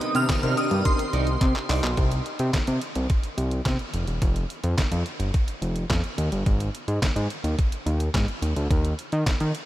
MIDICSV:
0, 0, Header, 1, 8, 480
1, 0, Start_track
1, 0, Tempo, 560748
1, 1691, Time_signature, 4, 2, 24, 8
1, 8264, End_track
2, 0, Start_track
2, 0, Title_t, "Synth bell"
2, 0, Program_c, 0, 98
2, 0, Note_on_c, 0, 87, 103
2, 135, Note_on_c, 0, 89, 106
2, 143, Note_off_c, 0, 87, 0
2, 468, Note_off_c, 0, 89, 0
2, 492, Note_on_c, 0, 87, 100
2, 730, Note_on_c, 0, 84, 86
2, 739, Note_off_c, 0, 87, 0
2, 1416, Note_off_c, 0, 84, 0
2, 8264, End_track
3, 0, Start_track
3, 0, Title_t, "Clean electric guitar"
3, 0, Program_c, 1, 27
3, 7, Note_on_c, 1, 63, 69
3, 13, Note_on_c, 1, 70, 71
3, 19, Note_on_c, 1, 75, 79
3, 100, Note_off_c, 1, 63, 0
3, 104, Note_off_c, 1, 70, 0
3, 106, Note_off_c, 1, 75, 0
3, 367, Note_on_c, 1, 74, 72
3, 373, Note_on_c, 1, 70, 76
3, 378, Note_on_c, 1, 63, 78
3, 478, Note_off_c, 1, 63, 0
3, 484, Note_off_c, 1, 70, 0
3, 486, Note_off_c, 1, 74, 0
3, 488, Note_on_c, 1, 63, 54
3, 494, Note_on_c, 1, 70, 66
3, 499, Note_on_c, 1, 74, 59
3, 581, Note_off_c, 1, 63, 0
3, 584, Note_off_c, 1, 70, 0
3, 587, Note_off_c, 1, 74, 0
3, 965, Note_on_c, 1, 63, 96
3, 971, Note_on_c, 1, 70, 94
3, 976, Note_on_c, 1, 74, 104
3, 1077, Note_off_c, 1, 74, 0
3, 1084, Note_off_c, 1, 70, 0
3, 1085, Note_off_c, 1, 63, 0
3, 1449, Note_on_c, 1, 63, 89
3, 1455, Note_on_c, 1, 70, 80
3, 1460, Note_on_c, 1, 74, 88
3, 1560, Note_off_c, 1, 74, 0
3, 1566, Note_off_c, 1, 70, 0
3, 1567, Note_off_c, 1, 63, 0
3, 8264, End_track
4, 0, Start_track
4, 0, Title_t, "Analog polysynth"
4, 0, Program_c, 2, 90
4, 127, Note_on_c, 2, 62, 72
4, 130, Note_on_c, 2, 63, 72
4, 132, Note_on_c, 2, 67, 67
4, 135, Note_on_c, 2, 70, 75
4, 247, Note_off_c, 2, 62, 0
4, 250, Note_off_c, 2, 63, 0
4, 251, Note_off_c, 2, 67, 0
4, 254, Note_off_c, 2, 70, 0
4, 367, Note_on_c, 2, 62, 75
4, 370, Note_on_c, 2, 63, 62
4, 371, Note_on_c, 2, 67, 69
4, 374, Note_on_c, 2, 70, 84
4, 870, Note_off_c, 2, 62, 0
4, 872, Note_off_c, 2, 63, 0
4, 872, Note_off_c, 2, 67, 0
4, 874, Note_off_c, 2, 70, 0
4, 8264, End_track
5, 0, Start_track
5, 0, Title_t, "Analog synth pad"
5, 0, Program_c, 3, 89
5, 0, Note_on_c, 3, 48, 94
5, 0, Note_on_c, 3, 51, 86
5, 0, Note_on_c, 3, 59, 78
5, 0, Note_on_c, 3, 60, 102
5, 1656, Note_off_c, 3, 59, 0
5, 1672, Note_off_c, 3, 48, 0
5, 1672, Note_off_c, 3, 51, 0
5, 1672, Note_off_c, 3, 60, 0
5, 8264, End_track
6, 0, Start_track
6, 0, Title_t, "Analog synth bass"
6, 0, Program_c, 4, 38
6, 128, Note_on_c, 4, 48, 111
6, 229, Note_off_c, 4, 48, 0
6, 369, Note_on_c, 4, 48, 98
6, 470, Note_off_c, 4, 48, 0
6, 609, Note_on_c, 4, 43, 92
6, 710, Note_off_c, 4, 43, 0
6, 970, Note_on_c, 4, 36, 82
6, 1170, Note_off_c, 4, 36, 0
6, 1209, Note_on_c, 4, 48, 97
6, 1310, Note_off_c, 4, 48, 0
6, 1450, Note_on_c, 4, 36, 99
6, 1550, Note_off_c, 4, 36, 0
6, 1571, Note_on_c, 4, 35, 103
6, 1671, Note_off_c, 4, 35, 0
6, 1690, Note_on_c, 4, 36, 96
6, 1891, Note_off_c, 4, 36, 0
6, 2051, Note_on_c, 4, 48, 94
6, 2151, Note_off_c, 4, 48, 0
6, 2292, Note_on_c, 4, 48, 83
6, 2391, Note_off_c, 4, 48, 0
6, 2531, Note_on_c, 4, 36, 83
6, 2631, Note_off_c, 4, 36, 0
6, 2889, Note_on_c, 4, 36, 80
6, 3090, Note_off_c, 4, 36, 0
6, 3130, Note_on_c, 4, 48, 99
6, 3230, Note_off_c, 4, 48, 0
6, 3369, Note_on_c, 4, 29, 82
6, 3470, Note_off_c, 4, 29, 0
6, 3488, Note_on_c, 4, 28, 81
6, 3589, Note_off_c, 4, 28, 0
6, 3612, Note_on_c, 4, 29, 113
6, 3811, Note_off_c, 4, 29, 0
6, 3970, Note_on_c, 4, 41, 98
6, 4070, Note_off_c, 4, 41, 0
6, 4091, Note_on_c, 4, 41, 41
6, 4139, Note_off_c, 4, 41, 0
6, 4209, Note_on_c, 4, 41, 98
6, 4310, Note_off_c, 4, 41, 0
6, 4448, Note_on_c, 4, 31, 75
6, 4549, Note_off_c, 4, 31, 0
6, 4809, Note_on_c, 4, 29, 76
6, 5010, Note_off_c, 4, 29, 0
6, 5050, Note_on_c, 4, 41, 93
6, 5150, Note_off_c, 4, 41, 0
6, 5290, Note_on_c, 4, 39, 91
6, 5390, Note_off_c, 4, 39, 0
6, 5411, Note_on_c, 4, 31, 92
6, 5511, Note_off_c, 4, 31, 0
6, 5532, Note_on_c, 4, 32, 110
6, 5732, Note_off_c, 4, 32, 0
6, 5889, Note_on_c, 4, 44, 97
6, 5990, Note_off_c, 4, 44, 0
6, 6012, Note_on_c, 4, 44, 47
6, 6060, Note_off_c, 4, 44, 0
6, 6128, Note_on_c, 4, 44, 93
6, 6229, Note_off_c, 4, 44, 0
6, 6368, Note_on_c, 4, 39, 82
6, 6469, Note_off_c, 4, 39, 0
6, 6729, Note_on_c, 4, 39, 85
6, 6930, Note_off_c, 4, 39, 0
6, 6971, Note_on_c, 4, 44, 96
6, 7071, Note_off_c, 4, 44, 0
6, 7208, Note_on_c, 4, 39, 81
6, 7309, Note_off_c, 4, 39, 0
6, 7331, Note_on_c, 4, 38, 93
6, 7431, Note_off_c, 4, 38, 0
6, 7452, Note_on_c, 4, 39, 115
6, 7651, Note_off_c, 4, 39, 0
6, 7813, Note_on_c, 4, 51, 106
6, 7912, Note_off_c, 4, 51, 0
6, 8052, Note_on_c, 4, 51, 93
6, 8152, Note_off_c, 4, 51, 0
6, 8264, End_track
7, 0, Start_track
7, 0, Title_t, "Muted clean electric guitar strokes"
7, 248, Note_on_c, 9, 29, 47
7, 334, Note_off_c, 9, 29, 0
7, 608, Note_on_c, 9, 29, 38
7, 694, Note_off_c, 9, 29, 0
7, 848, Note_on_c, 9, 29, 54
7, 933, Note_off_c, 9, 29, 0
7, 1087, Note_on_c, 9, 29, 43
7, 1173, Note_off_c, 9, 29, 0
7, 1208, Note_on_c, 9, 29, 49
7, 1294, Note_off_c, 9, 29, 0
7, 1329, Note_on_c, 9, 29, 53
7, 1414, Note_off_c, 9, 29, 0
7, 1570, Note_on_c, 9, 29, 42
7, 1655, Note_off_c, 9, 29, 0
7, 8264, End_track
8, 0, Start_track
8, 0, Title_t, "Drums"
8, 12, Note_on_c, 9, 42, 73
8, 97, Note_off_c, 9, 42, 0
8, 127, Note_on_c, 9, 42, 61
8, 213, Note_off_c, 9, 42, 0
8, 250, Note_on_c, 9, 36, 124
8, 252, Note_on_c, 9, 42, 111
8, 253, Note_on_c, 9, 38, 122
8, 254, Note_on_c, 9, 39, 91
8, 336, Note_off_c, 9, 36, 0
8, 337, Note_off_c, 9, 42, 0
8, 339, Note_off_c, 9, 38, 0
8, 339, Note_off_c, 9, 39, 0
8, 369, Note_on_c, 9, 42, 60
8, 454, Note_off_c, 9, 42, 0
8, 491, Note_on_c, 9, 42, 60
8, 576, Note_off_c, 9, 42, 0
8, 608, Note_on_c, 9, 42, 50
8, 694, Note_off_c, 9, 42, 0
8, 730, Note_on_c, 9, 42, 87
8, 733, Note_on_c, 9, 36, 104
8, 816, Note_off_c, 9, 42, 0
8, 818, Note_off_c, 9, 36, 0
8, 849, Note_on_c, 9, 42, 61
8, 935, Note_off_c, 9, 42, 0
8, 970, Note_on_c, 9, 42, 69
8, 1056, Note_off_c, 9, 42, 0
8, 1086, Note_on_c, 9, 42, 50
8, 1171, Note_off_c, 9, 42, 0
8, 1208, Note_on_c, 9, 42, 91
8, 1209, Note_on_c, 9, 36, 115
8, 1212, Note_on_c, 9, 39, 58
8, 1294, Note_off_c, 9, 42, 0
8, 1295, Note_off_c, 9, 36, 0
8, 1298, Note_off_c, 9, 39, 0
8, 1327, Note_on_c, 9, 42, 41
8, 1334, Note_on_c, 9, 39, 62
8, 1412, Note_off_c, 9, 42, 0
8, 1420, Note_off_c, 9, 39, 0
8, 1450, Note_on_c, 9, 46, 61
8, 1455, Note_on_c, 9, 39, 92
8, 1535, Note_off_c, 9, 46, 0
8, 1540, Note_off_c, 9, 39, 0
8, 1569, Note_on_c, 9, 42, 56
8, 1574, Note_on_c, 9, 39, 98
8, 1654, Note_off_c, 9, 42, 0
8, 1659, Note_off_c, 9, 39, 0
8, 1690, Note_on_c, 9, 42, 72
8, 1691, Note_on_c, 9, 36, 100
8, 1775, Note_off_c, 9, 42, 0
8, 1777, Note_off_c, 9, 36, 0
8, 1811, Note_on_c, 9, 42, 49
8, 1896, Note_off_c, 9, 42, 0
8, 1933, Note_on_c, 9, 42, 60
8, 2019, Note_off_c, 9, 42, 0
8, 2048, Note_on_c, 9, 42, 52
8, 2134, Note_off_c, 9, 42, 0
8, 2171, Note_on_c, 9, 36, 96
8, 2172, Note_on_c, 9, 42, 90
8, 2174, Note_on_c, 9, 38, 107
8, 2174, Note_on_c, 9, 39, 82
8, 2256, Note_off_c, 9, 36, 0
8, 2258, Note_off_c, 9, 42, 0
8, 2259, Note_off_c, 9, 38, 0
8, 2260, Note_off_c, 9, 39, 0
8, 2288, Note_on_c, 9, 42, 55
8, 2374, Note_off_c, 9, 42, 0
8, 2410, Note_on_c, 9, 42, 65
8, 2495, Note_off_c, 9, 42, 0
8, 2529, Note_on_c, 9, 42, 46
8, 2615, Note_off_c, 9, 42, 0
8, 2651, Note_on_c, 9, 42, 72
8, 2653, Note_on_c, 9, 36, 105
8, 2737, Note_off_c, 9, 42, 0
8, 2739, Note_off_c, 9, 36, 0
8, 2769, Note_on_c, 9, 42, 51
8, 2855, Note_off_c, 9, 42, 0
8, 2892, Note_on_c, 9, 42, 58
8, 2977, Note_off_c, 9, 42, 0
8, 3008, Note_on_c, 9, 42, 50
8, 3094, Note_off_c, 9, 42, 0
8, 3129, Note_on_c, 9, 42, 81
8, 3130, Note_on_c, 9, 36, 105
8, 3133, Note_on_c, 9, 38, 99
8, 3133, Note_on_c, 9, 39, 82
8, 3214, Note_off_c, 9, 42, 0
8, 3215, Note_off_c, 9, 36, 0
8, 3218, Note_off_c, 9, 38, 0
8, 3218, Note_off_c, 9, 39, 0
8, 3246, Note_on_c, 9, 42, 38
8, 3332, Note_off_c, 9, 42, 0
8, 3369, Note_on_c, 9, 42, 60
8, 3455, Note_off_c, 9, 42, 0
8, 3488, Note_on_c, 9, 42, 53
8, 3574, Note_off_c, 9, 42, 0
8, 3611, Note_on_c, 9, 36, 107
8, 3611, Note_on_c, 9, 42, 81
8, 3696, Note_off_c, 9, 42, 0
8, 3697, Note_off_c, 9, 36, 0
8, 3732, Note_on_c, 9, 42, 48
8, 3817, Note_off_c, 9, 42, 0
8, 3853, Note_on_c, 9, 42, 67
8, 3939, Note_off_c, 9, 42, 0
8, 3968, Note_on_c, 9, 42, 53
8, 4054, Note_off_c, 9, 42, 0
8, 4091, Note_on_c, 9, 36, 111
8, 4092, Note_on_c, 9, 42, 85
8, 4094, Note_on_c, 9, 38, 114
8, 4094, Note_on_c, 9, 39, 92
8, 4176, Note_off_c, 9, 36, 0
8, 4178, Note_off_c, 9, 42, 0
8, 4180, Note_off_c, 9, 38, 0
8, 4180, Note_off_c, 9, 39, 0
8, 4209, Note_on_c, 9, 42, 58
8, 4294, Note_off_c, 9, 42, 0
8, 4330, Note_on_c, 9, 42, 53
8, 4416, Note_off_c, 9, 42, 0
8, 4449, Note_on_c, 9, 42, 46
8, 4535, Note_off_c, 9, 42, 0
8, 4572, Note_on_c, 9, 42, 67
8, 4573, Note_on_c, 9, 36, 108
8, 4657, Note_off_c, 9, 42, 0
8, 4659, Note_off_c, 9, 36, 0
8, 4690, Note_on_c, 9, 42, 53
8, 4775, Note_off_c, 9, 42, 0
8, 4812, Note_on_c, 9, 42, 63
8, 4898, Note_off_c, 9, 42, 0
8, 4928, Note_on_c, 9, 42, 50
8, 5013, Note_off_c, 9, 42, 0
8, 5050, Note_on_c, 9, 36, 107
8, 5051, Note_on_c, 9, 42, 76
8, 5054, Note_on_c, 9, 38, 101
8, 5055, Note_on_c, 9, 39, 87
8, 5136, Note_off_c, 9, 36, 0
8, 5136, Note_off_c, 9, 42, 0
8, 5140, Note_off_c, 9, 38, 0
8, 5140, Note_off_c, 9, 39, 0
8, 5168, Note_on_c, 9, 42, 41
8, 5254, Note_off_c, 9, 42, 0
8, 5291, Note_on_c, 9, 42, 62
8, 5377, Note_off_c, 9, 42, 0
8, 5411, Note_on_c, 9, 42, 54
8, 5496, Note_off_c, 9, 42, 0
8, 5532, Note_on_c, 9, 36, 105
8, 5532, Note_on_c, 9, 42, 78
8, 5618, Note_off_c, 9, 36, 0
8, 5618, Note_off_c, 9, 42, 0
8, 5653, Note_on_c, 9, 42, 51
8, 5738, Note_off_c, 9, 42, 0
8, 5775, Note_on_c, 9, 42, 65
8, 5861, Note_off_c, 9, 42, 0
8, 5890, Note_on_c, 9, 42, 55
8, 5975, Note_off_c, 9, 42, 0
8, 6012, Note_on_c, 9, 36, 97
8, 6014, Note_on_c, 9, 42, 97
8, 6016, Note_on_c, 9, 38, 112
8, 6016, Note_on_c, 9, 39, 86
8, 6097, Note_off_c, 9, 36, 0
8, 6100, Note_off_c, 9, 42, 0
8, 6101, Note_off_c, 9, 38, 0
8, 6102, Note_off_c, 9, 39, 0
8, 6131, Note_on_c, 9, 42, 55
8, 6217, Note_off_c, 9, 42, 0
8, 6252, Note_on_c, 9, 42, 55
8, 6338, Note_off_c, 9, 42, 0
8, 6371, Note_on_c, 9, 42, 44
8, 6457, Note_off_c, 9, 42, 0
8, 6494, Note_on_c, 9, 36, 99
8, 6494, Note_on_c, 9, 42, 80
8, 6579, Note_off_c, 9, 42, 0
8, 6580, Note_off_c, 9, 36, 0
8, 6611, Note_on_c, 9, 42, 51
8, 6696, Note_off_c, 9, 42, 0
8, 6733, Note_on_c, 9, 42, 63
8, 6819, Note_off_c, 9, 42, 0
8, 6849, Note_on_c, 9, 42, 48
8, 6935, Note_off_c, 9, 42, 0
8, 6971, Note_on_c, 9, 36, 113
8, 6971, Note_on_c, 9, 42, 77
8, 6975, Note_on_c, 9, 38, 101
8, 6975, Note_on_c, 9, 39, 87
8, 7057, Note_off_c, 9, 36, 0
8, 7057, Note_off_c, 9, 42, 0
8, 7061, Note_off_c, 9, 38, 0
8, 7061, Note_off_c, 9, 39, 0
8, 7090, Note_on_c, 9, 42, 38
8, 7175, Note_off_c, 9, 42, 0
8, 7212, Note_on_c, 9, 42, 61
8, 7297, Note_off_c, 9, 42, 0
8, 7331, Note_on_c, 9, 42, 52
8, 7417, Note_off_c, 9, 42, 0
8, 7452, Note_on_c, 9, 36, 105
8, 7453, Note_on_c, 9, 42, 72
8, 7538, Note_off_c, 9, 36, 0
8, 7538, Note_off_c, 9, 42, 0
8, 7572, Note_on_c, 9, 42, 56
8, 7658, Note_off_c, 9, 42, 0
8, 7694, Note_on_c, 9, 42, 68
8, 7780, Note_off_c, 9, 42, 0
8, 7809, Note_on_c, 9, 42, 52
8, 7895, Note_off_c, 9, 42, 0
8, 7932, Note_on_c, 9, 36, 112
8, 7934, Note_on_c, 9, 42, 88
8, 7935, Note_on_c, 9, 38, 106
8, 7936, Note_on_c, 9, 39, 97
8, 8017, Note_off_c, 9, 36, 0
8, 8019, Note_off_c, 9, 42, 0
8, 8021, Note_off_c, 9, 38, 0
8, 8021, Note_off_c, 9, 39, 0
8, 8050, Note_on_c, 9, 42, 56
8, 8135, Note_off_c, 9, 42, 0
8, 8172, Note_on_c, 9, 42, 59
8, 8258, Note_off_c, 9, 42, 0
8, 8264, End_track
0, 0, End_of_file